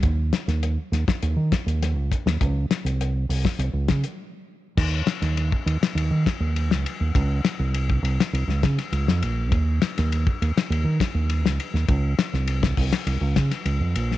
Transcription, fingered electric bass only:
\new Staff \with { instrumentName = "Fingered electric bass" } { \clef bass \time 4/4 \key des \major \tempo 4 = 101 ees,8 r16 ees,8 r16 ees,16 r16 ees,16 ees16 r16 ees,8 des,16 r16 ees,16 | des,8 r16 c,8. c,16 r16 c,16 des,16 des16 r4 r16 | ees,8 r16 ees,8 r16 ees,16 r16 ees,16 ees16 r16 ees,8 des,16 r16 ees,16 | des,8 r16 c,8. c,16 r16 c,16 des,16 des16 r16 des,16 f,16 bes,,8 |
ees,8 r16 ees,8 r16 ees,16 r16 ees,16 ees16 r16 ees,8 des,16 r16 ees,16 | des,8 r16 c,8. c,16 r16 c,16 des,16 des16 r16 des,16 f,16 bes,,8 | }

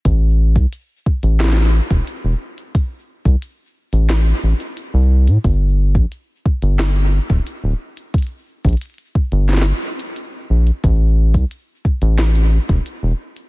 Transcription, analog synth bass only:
\new Staff \with { instrumentName = "Analog synth bass" } { \clef bass \time 4/4 \key a \phrygian \tempo 4 = 89 a,,8. c,16 r8. a,,8. r16 e,,16 r16 e,,16 r8 | r8. c,16 r8. a,,8 r16 a,,16 r8 c,8 a,16 | g,,8. bes,,16 r8. g,,8. r16 d,,16 r16 d,,16 r8 | r8. bes,,16 r8. g,,8 r4 r16 bes,,16 r16 |
a,,8. c,16 r8. a,,8. r16 e,,16 r16 e,,16 r8 | }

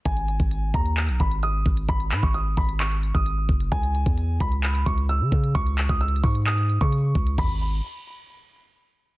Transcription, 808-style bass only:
\new Staff \with { instrumentName = "808-style bass" } { \clef bass \time 4/4 \key gis \minor \tempo 4 = 131 gis,,8. gis,,8. dis,8. b,,16 gis,,4 gis,,8 | gis,,8 gis,16 gis,,8. gis,,4~ gis,,16 gis,,8. fis,,8 | cis,8. e,8. cis,4 cis,8. cis16 cis8 | cis,8. cis,8. gis,4~ gis,16 cis8. cis,8 |
gis,,4 r2. | }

